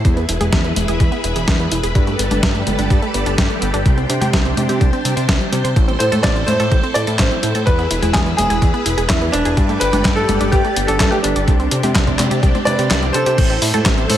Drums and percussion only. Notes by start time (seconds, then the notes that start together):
0.05 kick, closed hi-hat
0.17 closed hi-hat
0.29 closed hi-hat
0.41 closed hi-hat, high conga
0.52 kick, snare, closed hi-hat
0.64 closed hi-hat
0.76 closed hi-hat, high conga
0.88 closed hi-hat
1.00 kick, closed hi-hat
1.12 closed hi-hat
1.24 closed hi-hat
1.36 closed hi-hat
1.48 kick, snare, closed hi-hat
1.60 closed hi-hat
1.72 closed hi-hat
1.83 closed hi-hat
1.95 kick, closed hi-hat
2.07 closed hi-hat
2.19 closed hi-hat
2.31 closed hi-hat, high conga
2.43 kick, snare, closed hi-hat
2.55 closed hi-hat
2.67 closed hi-hat, high conga
2.79 closed hi-hat
2.90 kick, closed hi-hat
3.02 closed hi-hat
3.14 closed hi-hat
3.26 closed hi-hat
3.38 kick, snare, closed hi-hat
3.50 closed hi-hat
3.62 closed hi-hat
3.74 closed hi-hat
3.86 kick, closed hi-hat
3.98 closed hi-hat
4.10 closed hi-hat
4.22 closed hi-hat, high conga
4.33 kick, snare, closed hi-hat
4.45 closed hi-hat
4.57 closed hi-hat, high conga
4.69 closed hi-hat
4.81 kick, closed hi-hat
4.93 closed hi-hat
5.05 closed hi-hat
5.17 closed hi-hat
5.29 kick, snare, closed hi-hat
5.41 closed hi-hat
5.53 closed hi-hat
5.65 closed hi-hat
5.76 kick, closed hi-hat
5.88 closed hi-hat
6.00 closed hi-hat
6.12 closed hi-hat, high conga
6.24 kick, snare, clap, closed hi-hat
6.36 closed hi-hat
6.48 closed hi-hat, high conga
6.60 closed hi-hat
6.72 kick, closed hi-hat
6.84 closed hi-hat
6.95 closed hi-hat
7.07 closed hi-hat
7.19 kick, snare, clap, closed hi-hat
7.31 closed hi-hat
7.43 closed hi-hat
7.55 closed hi-hat
7.67 kick, closed hi-hat
7.79 closed hi-hat
7.91 closed hi-hat
8.03 closed hi-hat, high conga
8.14 kick, snare, clap, closed hi-hat
8.26 closed hi-hat
8.38 closed hi-hat, high conga
8.50 closed hi-hat
8.62 kick, closed hi-hat
8.74 closed hi-hat
8.86 closed hi-hat
8.98 closed hi-hat
9.10 kick, snare, clap, closed hi-hat
9.22 closed hi-hat
9.33 closed hi-hat
9.45 closed hi-hat
9.57 kick, closed hi-hat
9.69 closed hi-hat
9.81 closed hi-hat
9.93 closed hi-hat, high conga
10.05 kick, snare, clap, closed hi-hat
10.17 closed hi-hat
10.29 closed hi-hat, high conga
10.41 closed hi-hat
10.52 kick, closed hi-hat
10.65 closed hi-hat
10.76 closed hi-hat
10.88 closed hi-hat
11.00 kick, snare, clap, closed hi-hat
11.12 closed hi-hat
11.24 closed hi-hat
11.36 closed hi-hat
11.48 kick, closed hi-hat
11.60 closed hi-hat
11.71 closed hi-hat
11.83 closed hi-hat, high conga
11.95 kick, snare, clap, closed hi-hat
12.07 kick, closed hi-hat
12.19 clap, closed hi-hat, high conga
12.31 closed hi-hat
12.43 kick, closed hi-hat
12.55 closed hi-hat, high conga
12.67 closed hi-hat, high conga
12.79 closed hi-hat
12.91 snare, clap, closed hi-hat
13.03 closed hi-hat
13.14 closed hi-hat
13.26 closed hi-hat
13.38 kick, closed hi-hat, crash
13.50 closed hi-hat
13.62 open hi-hat
13.74 closed hi-hat, high conga
13.86 kick, snare, clap, closed hi-hat
13.98 closed hi-hat
14.10 open hi-hat, high conga